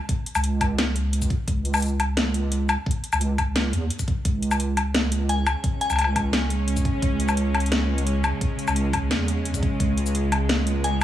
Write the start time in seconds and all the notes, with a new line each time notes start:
0.09 kick, closed hi-hat
0.26 closed hi-hat
0.35 C#2, low woodblock, shaker
0.44 closed hi-hat
0.61 kick, closed hi-hat, low woodblock
0.78 snare, closed hi-hat
0.96 closed hi-hat
1.13 closed hi-hat
1.22 kick, shaker
1.30 kick, closed hi-hat
1.48 C#2, kick, closed hi-hat
1.65 closed hi-hat
1.74 low woodblock, shaker
1.77 shaker
1.80 closed hi-hat, shaker
1.82 shaker
1.85 shaker
1.88 shaker
2.00 closed hi-hat, low woodblock
2.17 snare, closed hi-hat
2.34 closed hi-hat
2.52 closed hi-hat
2.69 closed hi-hat, low woodblock, shaker
2.86 kick
2.91 closed hi-hat
3.04 closed hi-hat
3.13 C#2, low woodblock, shaker
3.21 closed hi-hat
3.38 kick, closed hi-hat, low woodblock
3.56 snare, closed hi-hat
3.73 E2, closed hi-hat
3.90 closed hi-hat
3.99 kick, shaker
4.08 kick, closed hi-hat
4.25 C#2 C#3 G#3 C#4, kick, closed hi-hat
4.42 closed hi-hat
4.51 low woodblock, shaker
4.60 closed hi-hat
4.77 closed hi-hat, low woodblock
4.95 snare, closed hi-hat
5.12 closed hi-hat
5.29 G#5, closed hi-hat
5.47 closed hi-hat, low woodblock, shaker
5.64 kick, closed hi-hat
5.81 G#5, closed hi-hat
5.90 C#2 G#5, low woodblock, shaker
5.93 low woodblock
5.96 closed hi-hat, low woodblock
5.99 low woodblock
6.01 low woodblock
6.04 low woodblock
6.16 kick, closed hi-hat, low woodblock
6.33 snare, closed hi-hat
6.50 closed hi-hat
6.68 closed hi-hat
6.77 kick, shaker
6.85 kick, closed hi-hat
7.02 C#2, kick, closed hi-hat
7.20 closed hi-hat
7.29 low woodblock, shaker
7.37 closed hi-hat
7.55 closed hi-hat, low woodblock
7.60 closed hi-hat
7.66 closed hi-hat
7.72 snare, closed hi-hat
7.98 closed hi-hat
8.07 closed hi-hat
8.24 closed hi-hat, low woodblock, shaker
8.41 kick, closed hi-hat
8.59 closed hi-hat
8.68 C#2, low woodblock, shaker
8.76 closed hi-hat
8.93 kick, closed hi-hat, low woodblock
9.11 E2, snare, closed hi-hat
9.28 closed hi-hat
9.45 closed hi-hat
9.54 kick, shaker
9.63 kick, closed hi-hat
9.80 C#2 B3, kick, closed hi-hat
9.98 closed hi-hat
10.06 shaker
10.15 closed hi-hat
10.32 closed hi-hat, low woodblock
10.49 snare, closed hi-hat
10.67 closed hi-hat
10.84 G#5, closed hi-hat